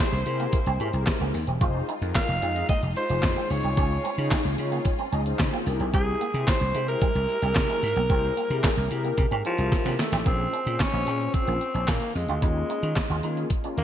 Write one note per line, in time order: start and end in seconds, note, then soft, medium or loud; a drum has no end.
0.00 1.57 G#3 medium
0.00 1.57 A#3 medium
0.00 1.57 E4 medium
0.00 0.10 G#4 medium
0.00 0.10 C5 loud
0.00 1.30 C5 loud
0.00 snare loud
0.13 0.22 C2 medium
0.26 0.46 C3 medium
0.26 0.59 E4 medium
0.26 0.59 G4 medium
0.26 0.59 G#4 medium
0.26 0.59 A#4 medium
0.26 muted clean electric guitar stroke soft
0.26 closed hi-hat medium
0.40 0.48 A#3 medium
0.40 closed hi-hat medium
0.53 muted clean electric guitar stroke soft
0.53 kick loud
0.53 closed hi-hat medium
0.66 0.76 C2 medium
0.66 0.74 C4 medium
0.66 closed hi-hat soft
0.80 0.90 G#2 loud
0.80 0.88 C#4 medium
0.80 0.88 E4 loud
0.80 0.88 G4 medium
0.80 0.88 G#4 loud
0.80 0.88 A#4 loud
0.80 closed hi-hat medium
0.93 1.03 C2 medium
0.93 1.34 E4 medium
0.93 1.34 G4 medium
0.93 1.35 G#4 medium
0.93 1.35 A#4 loud
0.93 closed hi-hat medium
1.06 kick loud
1.06 snare loud
1.06 clap medium
1.06 closed hi-hat loud
1.20 1.30 C#2 medium
1.20 1.28 A#3 medium
1.20 closed hi-hat soft
1.34 1.44 D#2 medium
1.34 muted clean electric guitar stroke soft
1.34 open hi-hat medium
1.47 1.57 E1 medium
1.47 1.55 C4 medium
1.47 closed hi-hat medium
1.61 1.81 F1 loud
1.61 5.62 G#3 medium
1.61 1.85 D#4 medium
1.61 3.48 D#4 medium
1.61 5.62 F4 medium
1.61 1.69 F4 medium
1.61 1.86 F4 medium
1.61 1.86 G#4 medium
1.61 1.86 C5 medium
1.61 kick loud
1.61 closed hi-hat medium
1.74 muted clean electric guitar stroke soft
1.88 1.96 D#4 medium
1.88 closed hi-hat medium
2.01 2.11 F2 medium
2.01 2.26 D#4 medium
2.01 2.26 F4 medium
2.01 2.26 G#4 medium
2.01 2.26 A#4 medium
2.01 closed hi-hat medium
2.15 2.66 F5 loud
2.15 kick loud
2.15 snare loud
2.15 clap loud
2.15 closed hi-hat medium
2.29 2.39 F1 medium
2.42 2.62 F2 medium
2.42 2.50 C4 medium
2.42 2.75 D#4 medium
2.42 2.75 F4 medium
2.42 2.75 G#4 medium
2.42 2.75 D#5 medium
2.42 closed hi-hat medium
2.56 closed hi-hat medium
2.69 2.77 A#3 medium
2.69 2.82 D#5 loud
2.69 kick loud
2.69 closed hi-hat loud
2.83 2.93 F1 medium
2.83 muted clean electric guitar stroke medium
2.83 closed hi-hat soft
2.96 3.04 D#4 medium
2.96 3.04 F4 medium
2.96 3.05 G#4 medium
2.96 3.52 C5 loud
2.96 3.05 D#5 medium
2.96 closed hi-hat medium
3.09 3.20 F1 loud
3.09 3.18 G#3 medium
3.09 3.48 D#4 medium
3.09 3.49 F4 medium
3.09 3.49 G#4 medium
3.09 3.50 C5 medium
3.09 closed hi-hat medium
3.22 3.33 F2 medium
3.22 kick loud
3.22 snare loud
3.22 clap medium
3.22 closed hi-hat loud
3.36 3.45 A#3 medium
3.36 closed hi-hat soft
3.50 3.60 C#2 medium
3.50 5.64 C#4 medium
3.50 4.04 D#4 medium
3.50 4.04 F4 medium
3.50 4.04 G#4 medium
3.50 4.04 C#5 medium
3.50 4.32 C#5 medium
3.50 muted clean electric guitar stroke soft
3.50 open hi-hat medium
3.63 3.74 C2 loud
3.63 3.72 C4 medium
3.63 closed hi-hat soft
3.77 3.97 C#2 loud
3.77 3.85 C#4 medium
3.77 kick loud
3.77 closed hi-hat medium
3.91 muted clean electric guitar stroke soft
4.04 4.12 C4 medium
4.04 closed hi-hat medium
4.17 4.28 C#3 medium
4.17 4.42 D#4 loud
4.17 4.42 F4 medium
4.17 4.42 G#4 medium
4.17 4.42 C#5 loud
4.17 closed hi-hat medium
4.31 4.39 G#3 medium
4.31 kick loud
4.31 snare loud
4.31 clap loud
4.31 closed hi-hat medium
4.45 4.55 C#2 medium
4.58 4.78 C#3 loud
4.58 4.91 D#4 medium
4.58 4.91 F4 medium
4.58 4.91 G#4 medium
4.58 4.91 C#5 loud
4.58 muted clean electric guitar stroke soft
4.58 closed hi-hat medium
4.72 4.80 A#3 medium
4.72 closed hi-hat soft
4.85 muted clean electric guitar stroke soft
4.85 kick loud
4.85 closed hi-hat loud
4.99 5.07 C4 medium
4.99 closed hi-hat soft
5.12 5.32 C#2 loud
5.12 5.20 C#4 medium
5.12 5.21 D#4 loud
5.12 5.21 F4 medium
5.12 5.21 G#4 medium
5.12 5.21 D#5 loud
5.12 closed hi-hat medium
5.25 5.66 D#4 medium
5.25 5.66 F4 medium
5.25 5.65 G#4 medium
5.25 5.67 C5 medium
5.25 closed hi-hat medium
5.39 5.49 C#3 loud
5.39 kick loud
5.39 snare loud
5.39 clap medium
5.39 closed hi-hat medium
5.53 5.61 A#3 medium
5.53 closed hi-hat soft
5.66 5.76 C2 loud
5.66 10.22 G#3 medium
5.66 10.22 A#3 medium
5.66 5.73 D4 medium
5.66 10.22 E4 medium
5.66 6.20 G4 medium
5.66 6.21 G#4 medium
5.66 6.21 A#4 loud
5.66 muted clean electric guitar stroke soft
5.66 open hi-hat medium
5.72 6.24 E4 medium
5.80 5.90 B1 loud
5.80 5.88 C4 medium
5.80 closed hi-hat medium
5.94 6.13 C2 loud
5.94 6.02 C4 medium
5.94 6.50 G#4 loud
5.94 kick loud
5.94 closed hi-hat medium
6.07 muted clean electric guitar stroke soft
6.20 6.28 A#3 medium
6.20 closed hi-hat medium
6.34 6.44 C3 loud
6.34 6.58 E4 medium
6.34 6.59 G4 medium
6.34 6.59 G#4 medium
6.34 6.59 C5 medium
6.34 closed hi-hat soft
6.47 6.88 C5 loud
6.47 kick loud
6.47 snare loud
6.47 clap medium
6.47 closed hi-hat medium
6.61 6.71 C2 medium
6.75 6.94 C3 medium
6.75 6.83 G#3 medium
6.75 7.07 E4 medium
6.75 7.07 G4 medium
6.75 7.08 G#4 medium
6.75 7.08 C5 medium
6.75 closed hi-hat medium
6.88 9.41 A#4 loud
6.88 closed hi-hat medium
7.01 7.09 G3 medium
7.01 kick loud
7.01 closed hi-hat loud
7.15 7.25 C2 medium
7.15 muted clean electric guitar stroke soft
7.15 closed hi-hat soft
7.29 7.37 E4 medium
7.29 7.37 G4 medium
7.29 7.37 G#4 medium
7.29 7.37 A#4 medium
7.29 closed hi-hat medium
7.42 7.52 C2 loud
7.42 7.50 G3 medium
7.42 7.49 D4 medium
7.42 7.83 G4 medium
7.42 7.83 G#4 medium
7.42 7.84 A#4 medium
7.42 closed hi-hat medium
7.49 7.86 E4 medium
7.55 7.66 C3 loud
7.55 kick loud
7.55 snare loud
7.55 clap medium
7.55 closed hi-hat loud
7.69 7.77 G#3 medium
7.69 closed hi-hat soft
7.83 7.93 G#2 loud
7.83 muted clean electric guitar stroke soft
7.83 open hi-hat medium
7.96 8.06 B1 loud
7.96 8.04 A#3 medium
7.96 closed hi-hat medium
8.10 8.30 C2 medium
8.10 8.18 C4 medium
8.10 8.34 E4 medium
8.10 8.34 G4 medium
8.10 8.34 G#4 medium
8.10 8.35 C5 medium
8.10 kick loud
8.10 closed hi-hat medium
8.23 muted clean electric guitar stroke soft
8.37 8.45 A#3 medium
8.37 closed hi-hat medium
8.50 8.60 C3 loud
8.50 8.75 E4 loud
8.50 8.75 G4 medium
8.50 8.75 G#4 medium
8.50 8.75 A#4 loud
8.50 closed hi-hat soft
8.64 8.72 G#3 medium
8.64 kick loud
8.64 snare loud
8.64 clap loud
8.64 closed hi-hat medium
8.77 8.87 C2 loud
8.91 9.11 C3 medium
8.91 9.24 E4 medium
8.91 9.24 G4 medium
8.91 9.24 G#4 medium
8.91 9.24 A#4 loud
8.91 muted clean electric guitar stroke soft
8.91 closed hi-hat medium
9.04 9.12 A#3 medium
9.04 closed hi-hat soft
9.17 9.28 C3 loud
9.17 muted clean electric guitar stroke soft
9.17 kick loud
9.17 closed hi-hat medium
9.31 9.41 G#2 loud
9.31 9.39 C4 medium
9.31 closed hi-hat soft
9.45 10.01 F3 loud
9.45 9.53 C#4 medium
9.45 9.53 E4 loud
9.45 9.53 G4 medium
9.45 9.53 G#4 medium
9.45 9.54 A#4 loud
9.45 closed hi-hat medium
9.58 9.68 C2 medium
9.58 9.99 E4 medium
9.58 9.99 G4 medium
9.58 10.00 G#4 medium
9.58 10.00 A#4 medium
9.58 closed hi-hat medium
9.72 kick loud
9.72 snare medium
9.72 closed hi-hat loud
9.85 9.95 C3 medium
9.85 9.93 A#3 medium
9.85 snare medium
9.85 closed hi-hat soft
9.99 10.26 A3 medium
9.99 muted clean electric guitar stroke soft
9.99 snare loud
9.99 open hi-hat medium
10.12 10.22 A1 medium
10.12 10.20 C4 medium
10.12 snare medium
10.12 closed hi-hat medium
10.26 10.46 A#1 loud
10.26 10.34 A#3 medium
10.26 10.51 C4 medium
10.26 10.77 C4 loud
10.26 10.51 C#4 medium
10.26 10.51 F4 medium
10.26 10.51 G#4 medium
10.26 kick loud
10.26 closed hi-hat medium
10.39 muted clean electric guitar stroke soft
10.53 10.61 C#4 medium
10.53 closed hi-hat medium
10.66 10.76 A#2 loud
10.66 10.83 C4 medium
10.66 10.83 C#4 medium
10.66 10.83 F4 medium
10.66 10.83 G#4 medium
10.66 closed hi-hat medium
10.80 11.36 C#4 loud
10.80 muted clean electric guitar stroke soft
10.80 kick loud
10.80 snare loud
10.80 clap loud
10.80 closed hi-hat medium
10.93 11.03 A#1 medium
10.93 11.59 C#4 medium
10.93 11.01 D#4 medium
10.93 11.59 F4 medium
10.93 11.59 G#4 medium
10.93 11.59 C5 medium
11.07 11.27 A#2 medium
11.07 11.15 C#4 medium
11.07 closed hi-hat medium
11.21 closed hi-hat soft
11.34 11.90 C4 medium
11.34 kick loud
11.34 closed hi-hat loud
11.47 11.58 A#1 medium
11.47 11.55 A#3 medium
11.47 closed hi-hat soft
11.61 muted clean electric guitar stroke soft
11.61 closed hi-hat medium
11.74 11.84 A#1 medium
11.74 11.82 C#4 medium
11.74 closed hi-hat medium
11.88 11.98 A#2 loud
11.88 12.15 A#3 medium
11.88 11.96 C#4 medium
11.88 kick loud
11.88 snare loud
11.88 clap medium
11.88 closed hi-hat loud
12.01 muted clean electric guitar stroke soft
12.01 closed hi-hat soft
12.15 12.25 F2 medium
12.15 12.40 G#3 medium
12.15 open hi-hat medium
12.28 12.39 D2 medium
12.28 12.37 F4 medium
12.28 closed hi-hat soft
12.42 12.62 D#2 loud
12.42 13.47 G#3 medium
12.42 12.91 A#3 medium
12.42 12.91 C#4 medium
12.42 12.50 D#4 medium
12.42 12.91 F4 medium
12.42 12.92 G#4 medium
12.42 kick loud
12.42 closed hi-hat medium
12.56 muted clean electric guitar stroke soft
12.69 12.77 D#4 medium
12.69 closed hi-hat medium
12.83 12.93 D#3 medium
12.83 closed hi-hat soft
12.96 muted clean electric guitar stroke soft
12.96 kick loud
12.96 snare loud
12.96 clap loud
12.96 closed hi-hat medium
13.10 13.20 D#2 medium
13.10 13.18 F4 medium
13.23 13.43 D#3 medium
13.23 13.48 A#3 loud
13.23 13.48 C#4 medium
13.23 13.31 D#4 medium
13.23 13.48 F4 medium
13.23 13.48 G#4 medium
13.23 closed hi-hat medium
13.37 closed hi-hat soft
13.50 kick loud
13.50 closed hi-hat loud
13.64 13.84 A#3 medium
13.64 13.84 C#4 medium
13.64 13.72 C#4 medium
13.64 13.84 F4 medium
13.64 13.71 G#4 medium
13.64 closed hi-hat soft
13.71 13.84 A#4 medium
13.77 13.84 D#2 medium
13.77 13.84 A#3 loud
13.77 muted clean electric guitar stroke medium
13.77 closed hi-hat medium